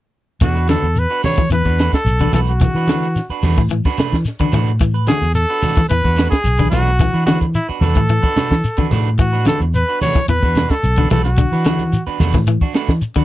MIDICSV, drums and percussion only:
0, 0, Header, 1, 3, 480
1, 0, Start_track
1, 0, Tempo, 547945
1, 370, Time_signature, 4, 2, 24, 8
1, 11604, End_track
2, 0, Start_track
2, 0, Title_t, "Shekere"
2, 364, Note_on_c, 9, 82, 85
2, 451, Note_off_c, 9, 82, 0
2, 487, Note_on_c, 9, 82, 25
2, 575, Note_off_c, 9, 82, 0
2, 603, Note_on_c, 9, 82, 57
2, 691, Note_off_c, 9, 82, 0
2, 727, Note_on_c, 9, 82, 28
2, 814, Note_off_c, 9, 82, 0
2, 838, Note_on_c, 9, 82, 75
2, 926, Note_off_c, 9, 82, 0
2, 961, Note_on_c, 9, 82, 23
2, 1048, Note_off_c, 9, 82, 0
2, 1076, Note_on_c, 9, 82, 65
2, 1164, Note_off_c, 9, 82, 0
2, 1199, Note_on_c, 9, 82, 25
2, 1287, Note_off_c, 9, 82, 0
2, 1314, Note_on_c, 9, 82, 73
2, 1402, Note_off_c, 9, 82, 0
2, 1447, Note_on_c, 9, 82, 25
2, 1535, Note_off_c, 9, 82, 0
2, 1567, Note_on_c, 9, 82, 71
2, 1654, Note_off_c, 9, 82, 0
2, 1693, Note_on_c, 9, 82, 27
2, 1781, Note_off_c, 9, 82, 0
2, 1808, Note_on_c, 9, 82, 70
2, 1896, Note_off_c, 9, 82, 0
2, 1928, Note_on_c, 9, 82, 26
2, 2016, Note_off_c, 9, 82, 0
2, 2047, Note_on_c, 9, 82, 62
2, 2134, Note_off_c, 9, 82, 0
2, 2175, Note_on_c, 9, 82, 27
2, 2262, Note_off_c, 9, 82, 0
2, 2294, Note_on_c, 9, 82, 87
2, 2381, Note_off_c, 9, 82, 0
2, 2415, Note_on_c, 9, 82, 28
2, 2503, Note_off_c, 9, 82, 0
2, 2532, Note_on_c, 9, 82, 58
2, 2619, Note_off_c, 9, 82, 0
2, 2653, Note_on_c, 9, 82, 25
2, 2741, Note_off_c, 9, 82, 0
2, 2766, Note_on_c, 9, 82, 74
2, 2853, Note_off_c, 9, 82, 0
2, 2885, Note_on_c, 9, 82, 23
2, 2973, Note_off_c, 9, 82, 0
2, 2997, Note_on_c, 9, 82, 62
2, 3085, Note_off_c, 9, 82, 0
2, 3125, Note_on_c, 9, 82, 28
2, 3212, Note_off_c, 9, 82, 0
2, 3233, Note_on_c, 9, 82, 72
2, 3321, Note_off_c, 9, 82, 0
2, 3364, Note_on_c, 9, 82, 24
2, 3451, Note_off_c, 9, 82, 0
2, 3479, Note_on_c, 9, 82, 65
2, 3566, Note_off_c, 9, 82, 0
2, 3605, Note_on_c, 9, 82, 28
2, 3693, Note_off_c, 9, 82, 0
2, 3722, Note_on_c, 9, 82, 73
2, 3809, Note_off_c, 9, 82, 0
2, 3845, Note_on_c, 9, 82, 28
2, 3933, Note_off_c, 9, 82, 0
2, 3960, Note_on_c, 9, 82, 65
2, 4047, Note_off_c, 9, 82, 0
2, 4087, Note_on_c, 9, 82, 28
2, 4175, Note_off_c, 9, 82, 0
2, 4210, Note_on_c, 9, 82, 79
2, 4298, Note_off_c, 9, 82, 0
2, 4328, Note_on_c, 9, 82, 26
2, 4416, Note_off_c, 9, 82, 0
2, 4447, Note_on_c, 9, 82, 61
2, 4534, Note_off_c, 9, 82, 0
2, 4572, Note_on_c, 9, 82, 28
2, 4659, Note_off_c, 9, 82, 0
2, 4680, Note_on_c, 9, 82, 71
2, 4768, Note_off_c, 9, 82, 0
2, 4811, Note_on_c, 9, 82, 26
2, 4899, Note_off_c, 9, 82, 0
2, 4921, Note_on_c, 9, 82, 69
2, 5009, Note_off_c, 9, 82, 0
2, 5054, Note_on_c, 9, 82, 23
2, 5142, Note_off_c, 9, 82, 0
2, 5166, Note_on_c, 9, 82, 72
2, 5253, Note_off_c, 9, 82, 0
2, 5296, Note_on_c, 9, 82, 25
2, 5384, Note_off_c, 9, 82, 0
2, 5403, Note_on_c, 9, 82, 63
2, 5491, Note_off_c, 9, 82, 0
2, 5533, Note_on_c, 9, 82, 29
2, 5621, Note_off_c, 9, 82, 0
2, 5643, Note_on_c, 9, 82, 78
2, 5731, Note_off_c, 9, 82, 0
2, 5768, Note_on_c, 9, 82, 27
2, 5856, Note_off_c, 9, 82, 0
2, 5886, Note_on_c, 9, 82, 74
2, 5974, Note_off_c, 9, 82, 0
2, 6009, Note_on_c, 9, 82, 29
2, 6097, Note_off_c, 9, 82, 0
2, 6124, Note_on_c, 9, 82, 76
2, 6212, Note_off_c, 9, 82, 0
2, 6250, Note_on_c, 9, 82, 25
2, 6338, Note_off_c, 9, 82, 0
2, 6369, Note_on_c, 9, 82, 62
2, 6456, Note_off_c, 9, 82, 0
2, 6495, Note_on_c, 9, 82, 27
2, 6583, Note_off_c, 9, 82, 0
2, 6610, Note_on_c, 9, 82, 79
2, 6698, Note_off_c, 9, 82, 0
2, 6739, Note_on_c, 9, 82, 27
2, 6826, Note_off_c, 9, 82, 0
2, 6852, Note_on_c, 9, 82, 64
2, 6940, Note_off_c, 9, 82, 0
2, 6979, Note_on_c, 9, 82, 26
2, 7067, Note_off_c, 9, 82, 0
2, 7091, Note_on_c, 9, 82, 71
2, 7178, Note_off_c, 9, 82, 0
2, 7211, Note_on_c, 9, 82, 24
2, 7299, Note_off_c, 9, 82, 0
2, 7332, Note_on_c, 9, 82, 61
2, 7420, Note_off_c, 9, 82, 0
2, 7461, Note_on_c, 9, 82, 29
2, 7548, Note_off_c, 9, 82, 0
2, 7571, Note_on_c, 9, 82, 74
2, 7659, Note_off_c, 9, 82, 0
2, 7697, Note_on_c, 9, 82, 29
2, 7785, Note_off_c, 9, 82, 0
2, 7820, Note_on_c, 9, 82, 66
2, 7908, Note_off_c, 9, 82, 0
2, 7941, Note_on_c, 9, 82, 29
2, 8029, Note_off_c, 9, 82, 0
2, 8055, Note_on_c, 9, 82, 76
2, 8143, Note_off_c, 9, 82, 0
2, 8185, Note_on_c, 9, 82, 28
2, 8273, Note_off_c, 9, 82, 0
2, 8297, Note_on_c, 9, 82, 68
2, 8384, Note_off_c, 9, 82, 0
2, 8419, Note_on_c, 9, 82, 29
2, 8507, Note_off_c, 9, 82, 0
2, 8535, Note_on_c, 9, 82, 81
2, 8623, Note_off_c, 9, 82, 0
2, 8659, Note_on_c, 9, 82, 26
2, 8747, Note_off_c, 9, 82, 0
2, 8775, Note_on_c, 9, 82, 72
2, 8863, Note_off_c, 9, 82, 0
2, 8902, Note_on_c, 9, 82, 26
2, 8990, Note_off_c, 9, 82, 0
2, 9010, Note_on_c, 9, 82, 79
2, 9098, Note_off_c, 9, 82, 0
2, 9137, Note_on_c, 9, 82, 25
2, 9225, Note_off_c, 9, 82, 0
2, 9245, Note_on_c, 9, 82, 68
2, 9333, Note_off_c, 9, 82, 0
2, 9374, Note_on_c, 9, 82, 29
2, 9462, Note_off_c, 9, 82, 0
2, 9489, Note_on_c, 9, 82, 68
2, 9576, Note_off_c, 9, 82, 0
2, 9613, Note_on_c, 9, 82, 27
2, 9701, Note_off_c, 9, 82, 0
2, 9727, Note_on_c, 9, 82, 65
2, 9814, Note_off_c, 9, 82, 0
2, 9850, Note_on_c, 9, 82, 31
2, 9938, Note_off_c, 9, 82, 0
2, 9967, Note_on_c, 9, 82, 83
2, 10054, Note_off_c, 9, 82, 0
2, 10094, Note_on_c, 9, 82, 29
2, 10182, Note_off_c, 9, 82, 0
2, 10204, Note_on_c, 9, 82, 60
2, 10292, Note_off_c, 9, 82, 0
2, 10329, Note_on_c, 9, 82, 26
2, 10417, Note_off_c, 9, 82, 0
2, 10450, Note_on_c, 9, 82, 78
2, 10537, Note_off_c, 9, 82, 0
2, 10570, Note_on_c, 9, 82, 26
2, 10657, Note_off_c, 9, 82, 0
2, 10693, Note_on_c, 9, 82, 72
2, 10781, Note_off_c, 9, 82, 0
2, 10811, Note_on_c, 9, 82, 28
2, 10899, Note_off_c, 9, 82, 0
2, 10920, Note_on_c, 9, 82, 73
2, 11008, Note_off_c, 9, 82, 0
2, 11048, Note_on_c, 9, 82, 22
2, 11136, Note_off_c, 9, 82, 0
2, 11158, Note_on_c, 9, 82, 70
2, 11246, Note_off_c, 9, 82, 0
2, 11283, Note_on_c, 9, 82, 29
2, 11371, Note_off_c, 9, 82, 0
2, 11403, Note_on_c, 9, 82, 75
2, 11490, Note_off_c, 9, 82, 0
2, 11521, Note_on_c, 9, 82, 28
2, 11604, Note_off_c, 9, 82, 0
2, 11604, End_track
3, 0, Start_track
3, 0, Title_t, "Drums"
3, 357, Note_on_c, 9, 42, 62
3, 361, Note_on_c, 9, 36, 80
3, 365, Note_on_c, 9, 38, 28
3, 366, Note_on_c, 9, 64, 67
3, 445, Note_off_c, 9, 42, 0
3, 449, Note_off_c, 9, 36, 0
3, 453, Note_off_c, 9, 38, 0
3, 454, Note_off_c, 9, 64, 0
3, 603, Note_on_c, 9, 42, 45
3, 606, Note_on_c, 9, 63, 81
3, 611, Note_on_c, 9, 38, 62
3, 691, Note_off_c, 9, 42, 0
3, 694, Note_off_c, 9, 63, 0
3, 698, Note_off_c, 9, 38, 0
3, 842, Note_on_c, 9, 42, 62
3, 930, Note_off_c, 9, 42, 0
3, 1085, Note_on_c, 9, 46, 61
3, 1087, Note_on_c, 9, 63, 72
3, 1087, Note_on_c, 9, 64, 80
3, 1093, Note_on_c, 9, 38, 27
3, 1172, Note_off_c, 9, 46, 0
3, 1175, Note_off_c, 9, 63, 0
3, 1175, Note_off_c, 9, 64, 0
3, 1180, Note_off_c, 9, 38, 0
3, 1208, Note_on_c, 9, 36, 67
3, 1211, Note_on_c, 9, 63, 61
3, 1295, Note_off_c, 9, 36, 0
3, 1299, Note_off_c, 9, 63, 0
3, 1329, Note_on_c, 9, 42, 61
3, 1337, Note_on_c, 9, 38, 28
3, 1417, Note_off_c, 9, 42, 0
3, 1424, Note_off_c, 9, 38, 0
3, 1448, Note_on_c, 9, 36, 57
3, 1536, Note_off_c, 9, 36, 0
3, 1569, Note_on_c, 9, 42, 49
3, 1577, Note_on_c, 9, 38, 67
3, 1656, Note_off_c, 9, 42, 0
3, 1664, Note_off_c, 9, 38, 0
3, 1689, Note_on_c, 9, 36, 59
3, 1693, Note_on_c, 9, 42, 45
3, 1701, Note_on_c, 9, 38, 65
3, 1777, Note_off_c, 9, 36, 0
3, 1781, Note_off_c, 9, 42, 0
3, 1789, Note_off_c, 9, 38, 0
3, 1807, Note_on_c, 9, 42, 68
3, 1895, Note_off_c, 9, 42, 0
3, 1926, Note_on_c, 9, 63, 65
3, 1928, Note_on_c, 9, 36, 50
3, 2013, Note_off_c, 9, 63, 0
3, 2016, Note_off_c, 9, 36, 0
3, 2040, Note_on_c, 9, 63, 81
3, 2040, Note_on_c, 9, 64, 75
3, 2048, Note_on_c, 9, 42, 53
3, 2128, Note_off_c, 9, 63, 0
3, 2128, Note_off_c, 9, 64, 0
3, 2136, Note_off_c, 9, 42, 0
3, 2166, Note_on_c, 9, 42, 47
3, 2253, Note_off_c, 9, 42, 0
3, 2286, Note_on_c, 9, 36, 83
3, 2288, Note_on_c, 9, 42, 67
3, 2289, Note_on_c, 9, 64, 64
3, 2374, Note_off_c, 9, 36, 0
3, 2376, Note_off_c, 9, 42, 0
3, 2377, Note_off_c, 9, 64, 0
3, 2518, Note_on_c, 9, 63, 77
3, 2524, Note_on_c, 9, 42, 47
3, 2532, Note_on_c, 9, 38, 64
3, 2606, Note_off_c, 9, 63, 0
3, 2612, Note_off_c, 9, 42, 0
3, 2620, Note_off_c, 9, 38, 0
3, 2655, Note_on_c, 9, 42, 46
3, 2742, Note_off_c, 9, 42, 0
3, 2775, Note_on_c, 9, 42, 56
3, 2783, Note_on_c, 9, 38, 24
3, 2862, Note_off_c, 9, 42, 0
3, 2870, Note_off_c, 9, 38, 0
3, 3005, Note_on_c, 9, 63, 68
3, 3005, Note_on_c, 9, 64, 67
3, 3009, Note_on_c, 9, 46, 66
3, 3093, Note_off_c, 9, 63, 0
3, 3093, Note_off_c, 9, 64, 0
3, 3097, Note_off_c, 9, 46, 0
3, 3133, Note_on_c, 9, 36, 70
3, 3221, Note_off_c, 9, 36, 0
3, 3257, Note_on_c, 9, 42, 64
3, 3344, Note_off_c, 9, 42, 0
3, 3374, Note_on_c, 9, 36, 59
3, 3386, Note_on_c, 9, 38, 27
3, 3462, Note_off_c, 9, 36, 0
3, 3474, Note_off_c, 9, 38, 0
3, 3487, Note_on_c, 9, 64, 67
3, 3494, Note_on_c, 9, 42, 46
3, 3502, Note_on_c, 9, 38, 73
3, 3574, Note_off_c, 9, 64, 0
3, 3581, Note_off_c, 9, 42, 0
3, 3589, Note_off_c, 9, 38, 0
3, 3614, Note_on_c, 9, 36, 57
3, 3626, Note_on_c, 9, 38, 56
3, 3702, Note_off_c, 9, 36, 0
3, 3714, Note_off_c, 9, 38, 0
3, 3740, Note_on_c, 9, 42, 62
3, 3748, Note_on_c, 9, 38, 26
3, 3828, Note_off_c, 9, 42, 0
3, 3835, Note_off_c, 9, 38, 0
3, 3853, Note_on_c, 9, 63, 65
3, 3855, Note_on_c, 9, 36, 54
3, 3941, Note_off_c, 9, 63, 0
3, 3942, Note_off_c, 9, 36, 0
3, 3969, Note_on_c, 9, 63, 87
3, 3969, Note_on_c, 9, 64, 70
3, 3976, Note_on_c, 9, 42, 49
3, 4057, Note_off_c, 9, 63, 0
3, 4057, Note_off_c, 9, 64, 0
3, 4064, Note_off_c, 9, 42, 0
3, 4100, Note_on_c, 9, 42, 43
3, 4188, Note_off_c, 9, 42, 0
3, 4211, Note_on_c, 9, 36, 84
3, 4212, Note_on_c, 9, 42, 59
3, 4299, Note_off_c, 9, 36, 0
3, 4300, Note_off_c, 9, 42, 0
3, 4443, Note_on_c, 9, 63, 75
3, 4455, Note_on_c, 9, 42, 42
3, 4463, Note_on_c, 9, 38, 64
3, 4530, Note_off_c, 9, 63, 0
3, 4543, Note_off_c, 9, 42, 0
3, 4551, Note_off_c, 9, 38, 0
3, 4694, Note_on_c, 9, 42, 64
3, 4781, Note_off_c, 9, 42, 0
3, 4929, Note_on_c, 9, 63, 73
3, 4929, Note_on_c, 9, 64, 80
3, 4937, Note_on_c, 9, 46, 61
3, 5016, Note_off_c, 9, 63, 0
3, 5016, Note_off_c, 9, 64, 0
3, 5024, Note_off_c, 9, 46, 0
3, 5052, Note_on_c, 9, 63, 63
3, 5054, Note_on_c, 9, 36, 73
3, 5139, Note_off_c, 9, 63, 0
3, 5142, Note_off_c, 9, 36, 0
3, 5173, Note_on_c, 9, 42, 59
3, 5261, Note_off_c, 9, 42, 0
3, 5296, Note_on_c, 9, 36, 59
3, 5383, Note_off_c, 9, 36, 0
3, 5415, Note_on_c, 9, 42, 53
3, 5423, Note_on_c, 9, 38, 69
3, 5503, Note_off_c, 9, 42, 0
3, 5511, Note_off_c, 9, 38, 0
3, 5535, Note_on_c, 9, 36, 64
3, 5537, Note_on_c, 9, 42, 43
3, 5545, Note_on_c, 9, 38, 63
3, 5623, Note_off_c, 9, 36, 0
3, 5625, Note_off_c, 9, 42, 0
3, 5632, Note_off_c, 9, 38, 0
3, 5659, Note_on_c, 9, 42, 72
3, 5747, Note_off_c, 9, 42, 0
3, 5772, Note_on_c, 9, 63, 63
3, 5775, Note_on_c, 9, 36, 63
3, 5860, Note_off_c, 9, 63, 0
3, 5862, Note_off_c, 9, 36, 0
3, 5887, Note_on_c, 9, 63, 84
3, 5887, Note_on_c, 9, 64, 75
3, 5893, Note_on_c, 9, 42, 50
3, 5975, Note_off_c, 9, 63, 0
3, 5975, Note_off_c, 9, 64, 0
3, 5980, Note_off_c, 9, 42, 0
3, 6018, Note_on_c, 9, 42, 51
3, 6105, Note_off_c, 9, 42, 0
3, 6129, Note_on_c, 9, 64, 64
3, 6130, Note_on_c, 9, 36, 85
3, 6132, Note_on_c, 9, 42, 62
3, 6140, Note_on_c, 9, 38, 28
3, 6217, Note_off_c, 9, 64, 0
3, 6218, Note_off_c, 9, 36, 0
3, 6220, Note_off_c, 9, 42, 0
3, 6228, Note_off_c, 9, 38, 0
3, 6366, Note_on_c, 9, 63, 86
3, 6370, Note_on_c, 9, 42, 50
3, 6378, Note_on_c, 9, 38, 69
3, 6454, Note_off_c, 9, 63, 0
3, 6458, Note_off_c, 9, 42, 0
3, 6466, Note_off_c, 9, 38, 0
3, 6491, Note_on_c, 9, 42, 47
3, 6493, Note_on_c, 9, 36, 59
3, 6578, Note_off_c, 9, 42, 0
3, 6581, Note_off_c, 9, 36, 0
3, 6611, Note_on_c, 9, 42, 59
3, 6698, Note_off_c, 9, 42, 0
3, 6843, Note_on_c, 9, 63, 71
3, 6843, Note_on_c, 9, 64, 69
3, 6848, Note_on_c, 9, 42, 45
3, 6931, Note_off_c, 9, 63, 0
3, 6931, Note_off_c, 9, 64, 0
3, 6936, Note_off_c, 9, 42, 0
3, 6972, Note_on_c, 9, 36, 70
3, 6972, Note_on_c, 9, 63, 68
3, 7060, Note_off_c, 9, 36, 0
3, 7060, Note_off_c, 9, 63, 0
3, 7090, Note_on_c, 9, 42, 64
3, 7177, Note_off_c, 9, 42, 0
3, 7213, Note_on_c, 9, 36, 57
3, 7301, Note_off_c, 9, 36, 0
3, 7326, Note_on_c, 9, 42, 49
3, 7327, Note_on_c, 9, 64, 69
3, 7334, Note_on_c, 9, 38, 66
3, 7414, Note_off_c, 9, 42, 0
3, 7414, Note_off_c, 9, 64, 0
3, 7422, Note_off_c, 9, 38, 0
3, 7453, Note_on_c, 9, 36, 57
3, 7461, Note_on_c, 9, 38, 62
3, 7540, Note_off_c, 9, 36, 0
3, 7549, Note_off_c, 9, 38, 0
3, 7568, Note_on_c, 9, 42, 63
3, 7655, Note_off_c, 9, 42, 0
3, 7689, Note_on_c, 9, 63, 70
3, 7692, Note_on_c, 9, 36, 57
3, 7777, Note_off_c, 9, 63, 0
3, 7780, Note_off_c, 9, 36, 0
3, 7806, Note_on_c, 9, 63, 83
3, 7806, Note_on_c, 9, 64, 70
3, 7810, Note_on_c, 9, 46, 63
3, 7894, Note_off_c, 9, 63, 0
3, 7894, Note_off_c, 9, 64, 0
3, 7898, Note_off_c, 9, 46, 0
3, 7931, Note_on_c, 9, 42, 45
3, 8018, Note_off_c, 9, 42, 0
3, 8046, Note_on_c, 9, 42, 62
3, 8050, Note_on_c, 9, 36, 79
3, 8134, Note_off_c, 9, 42, 0
3, 8137, Note_off_c, 9, 36, 0
3, 8284, Note_on_c, 9, 63, 81
3, 8289, Note_on_c, 9, 42, 46
3, 8297, Note_on_c, 9, 38, 64
3, 8371, Note_off_c, 9, 63, 0
3, 8377, Note_off_c, 9, 42, 0
3, 8385, Note_off_c, 9, 38, 0
3, 8533, Note_on_c, 9, 42, 54
3, 8620, Note_off_c, 9, 42, 0
3, 8771, Note_on_c, 9, 46, 64
3, 8773, Note_on_c, 9, 63, 78
3, 8773, Note_on_c, 9, 64, 68
3, 8859, Note_off_c, 9, 46, 0
3, 8861, Note_off_c, 9, 63, 0
3, 8861, Note_off_c, 9, 64, 0
3, 8893, Note_on_c, 9, 36, 72
3, 8981, Note_off_c, 9, 36, 0
3, 9009, Note_on_c, 9, 42, 70
3, 9096, Note_off_c, 9, 42, 0
3, 9133, Note_on_c, 9, 36, 63
3, 9221, Note_off_c, 9, 36, 0
3, 9252, Note_on_c, 9, 64, 68
3, 9253, Note_on_c, 9, 42, 54
3, 9261, Note_on_c, 9, 38, 61
3, 9339, Note_off_c, 9, 64, 0
3, 9340, Note_off_c, 9, 42, 0
3, 9348, Note_off_c, 9, 38, 0
3, 9373, Note_on_c, 9, 36, 57
3, 9375, Note_on_c, 9, 42, 45
3, 9383, Note_on_c, 9, 38, 59
3, 9461, Note_off_c, 9, 36, 0
3, 9462, Note_off_c, 9, 42, 0
3, 9470, Note_off_c, 9, 38, 0
3, 9491, Note_on_c, 9, 42, 68
3, 9579, Note_off_c, 9, 42, 0
3, 9614, Note_on_c, 9, 36, 60
3, 9614, Note_on_c, 9, 63, 67
3, 9702, Note_off_c, 9, 36, 0
3, 9702, Note_off_c, 9, 63, 0
3, 9732, Note_on_c, 9, 42, 55
3, 9735, Note_on_c, 9, 63, 81
3, 9735, Note_on_c, 9, 64, 81
3, 9820, Note_off_c, 9, 42, 0
3, 9822, Note_off_c, 9, 63, 0
3, 9822, Note_off_c, 9, 64, 0
3, 9850, Note_on_c, 9, 42, 54
3, 9858, Note_on_c, 9, 38, 30
3, 9938, Note_off_c, 9, 42, 0
3, 9946, Note_off_c, 9, 38, 0
3, 9963, Note_on_c, 9, 42, 70
3, 9967, Note_on_c, 9, 36, 90
3, 10051, Note_off_c, 9, 42, 0
3, 10055, Note_off_c, 9, 36, 0
3, 10208, Note_on_c, 9, 42, 51
3, 10212, Note_on_c, 9, 63, 86
3, 10215, Note_on_c, 9, 38, 64
3, 10295, Note_off_c, 9, 42, 0
3, 10299, Note_off_c, 9, 63, 0
3, 10303, Note_off_c, 9, 38, 0
3, 10329, Note_on_c, 9, 42, 52
3, 10330, Note_on_c, 9, 63, 70
3, 10337, Note_on_c, 9, 38, 24
3, 10417, Note_off_c, 9, 42, 0
3, 10418, Note_off_c, 9, 63, 0
3, 10425, Note_off_c, 9, 38, 0
3, 10445, Note_on_c, 9, 42, 59
3, 10533, Note_off_c, 9, 42, 0
3, 10685, Note_on_c, 9, 46, 59
3, 10687, Note_on_c, 9, 63, 79
3, 10687, Note_on_c, 9, 64, 73
3, 10773, Note_off_c, 9, 46, 0
3, 10775, Note_off_c, 9, 63, 0
3, 10775, Note_off_c, 9, 64, 0
3, 10810, Note_on_c, 9, 36, 72
3, 10810, Note_on_c, 9, 63, 72
3, 10816, Note_on_c, 9, 38, 31
3, 10897, Note_off_c, 9, 36, 0
3, 10898, Note_off_c, 9, 63, 0
3, 10904, Note_off_c, 9, 38, 0
3, 10924, Note_on_c, 9, 42, 68
3, 11012, Note_off_c, 9, 42, 0
3, 11049, Note_on_c, 9, 36, 62
3, 11136, Note_off_c, 9, 36, 0
3, 11163, Note_on_c, 9, 42, 56
3, 11171, Note_on_c, 9, 38, 70
3, 11250, Note_off_c, 9, 42, 0
3, 11258, Note_off_c, 9, 38, 0
3, 11288, Note_on_c, 9, 36, 64
3, 11293, Note_on_c, 9, 38, 63
3, 11375, Note_off_c, 9, 36, 0
3, 11381, Note_off_c, 9, 38, 0
3, 11400, Note_on_c, 9, 42, 67
3, 11488, Note_off_c, 9, 42, 0
3, 11528, Note_on_c, 9, 36, 59
3, 11531, Note_on_c, 9, 63, 66
3, 11604, Note_off_c, 9, 36, 0
3, 11604, Note_off_c, 9, 63, 0
3, 11604, End_track
0, 0, End_of_file